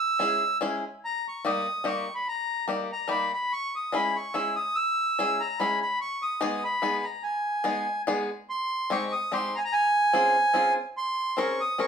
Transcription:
Already playing: E6
0.19 G#3 C#4 E4 G#4
0.61 G#3 C#4 E4 G#4
1.05 A#5
1.28 C#6
1.45 G3 A#3 D#4 G4 D#6
1.84 G3 A#3 D#4 G4 C#6
2.15 B5
2.28 A#5
2.68 G3 A#3 D#4 G4
2.93 A#5
3.08 G3 A#3 D#4 G4 B5
3.33 B5
3.53 C#6
3.76 D#6
3.92 G#3 C#4 E4 G#4 B5
4.16 C#6
4.34 G#3 C#4 E4 G#4 E6
4.56 D#6
4.75 E6
5.19 G#3 C#4 E4 G#4
5.40 A#5
5.59 G#3 C#4 E4 G#4 B5
5.82 B5
6.01 C#6
6.22 D#6
6.41 G#3 B3 D#4 G#4
6.64 B5
6.82 G#3 B3 D#4 G#4
7.04 A#5
7.23 G#5
7.64 G#3 B3 D#4 G#4
8.07 G#3 B3 D#4 G#4
8.50 C6
8.90 G#3 C4 D#4 G4 C#6
9.12 D#6
9.32 G#3 C4 D#4 G4 C6
9.55 G#5 A#5
9.65 A#5
9.73 G#5
10.13 C4 C#4 F4 G#4
10.54 C4 C#4 F4 G#4
10.97 C6
11.37 C4 C#4 G#4 A#4 C#6
11.61 D#6
11.78 C4 C#4 G#4 A#4 C#6

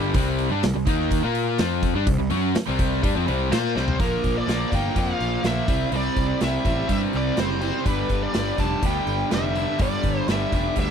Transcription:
Already playing: G1 G2 D3 G3
0.14 C2 C3 G3 C4, kick, open hi-hat
0.39 open hi-hat
0.51 G2 G3 D4
0.63 C2 C3 G3, snare, open hi-hat
0.75 C2 C3 G3
0.87 D#2 D#3 A#3 D#4, kick, open hi-hat
1.00 snare
1.11 kick, open hi-hat
1.23 A#2 A#3 F4 A#4
1.35 open hi-hat
1.59 F2 F3 C4 F4, snare, open hi-hat
1.83 kick, open hi-hat
1.95 G2 G3 D4
2.07 C2 C3 G3, kick, open hi-hat
2.19 C2 C3 G3
2.30 F#2 F#3 C#4 F#4, open hi-hat
2.55 muted picked electric bass stroke, muted overdriven electric guitar stroke, snare, open hi-hat
2.67 C2 C3 G3 C4
2.79 kick, open hi-hat
2.92 snare
3.03 G2 G3 D4, kick, open hi-hat
3.15 F2 F3 C4
3.27 C2 C3 G3 C4, open hi-hat
3.50 A#2 A#3 F4 A#4 C5, snare, open hi-hat
3.75 C2 C3 G3 C4, snare
3.88 floor tom
3.98 A#1 A#2 D3 F3 A#3 D4 A#4, kick, open hi-hat
4.23 A#1 F3 A#3 D4 A#4, kick, open hi-hat
4.37 D5
4.46 A#1 A#2 D3 F3 A#3 D4 A#4, snare, open hi-hat
4.71 G1 A#2 F3 A#3 D4 A#4, kick, open hi-hat
4.75 G5
4.95 F2 A#2 F3 A#3 D4 A#4 F5, kick, open hi-hat
5.20 A#1, snare, open hi-hat
5.42 A#1 A#2 D3 F3 A#3 D4 A#4, snare, open hi-hat
5.47 E5
5.68 C2 C3 G3 C4 E4 C5, kick, open hi-hat
5.92 C2 C3 G3 C4 E4 C5, open hi-hat
5.96 D5
6.16 C2 C4 E4 C5, kick, open hi-hat
6.40 C2 C3 G3 C4 E4 C5, snare, open hi-hat
6.44 E5
6.64 A1 C3 G3 C4 E4 C5, kick, open hi-hat
6.87 G2 C3 G3 C4 E4, kick, open hi-hat
6.92 C5 E5
7.13 C2 D5, snare, open hi-hat
7.36 F#1 C3 G3 C4 E4 C5, snare, open hi-hat
7.60 C3 G3 C4 E4 C5, open hi-hat
7.84 G1 G2 D3 G3 B3 D4 B4, kick, open hi-hat
8.09 G1 G3 B3 D4 B4, kick, open hi-hat
8.23 D5
8.34 G1 G2 D3 G3 B3 D4 B4, snare, open hi-hat
8.57 F1 G2 D3 G3 B3 D4 B4 A5, kick, open hi-hat
8.82 D2 G2 D3 G3 B3 D4 B4, kick, open hi-hat
8.86 G5
9.07 G1, open hi-hat
9.30 F1 G2 D3 G3 B3 D4 B4, snare, open hi-hat
9.34 E5
9.54 G2 D3 G3 B3 B4, open hi-hat
9.78 G1 G2 D3 G3 B3 D4 B4 D5, kick, open hi-hat
10.03 G1 B3 D4 B4, kick, open hi-hat
10.27 G1 G2 D3 G3 B3 D4 B4 E5, snare, open hi-hat
10.51 F1 G2 D3 G3 B3 D4 B4, kick, open hi-hat
10.76 D2 G2 D3 G3 B3 D4 B4 E5, kick, open hi-hat

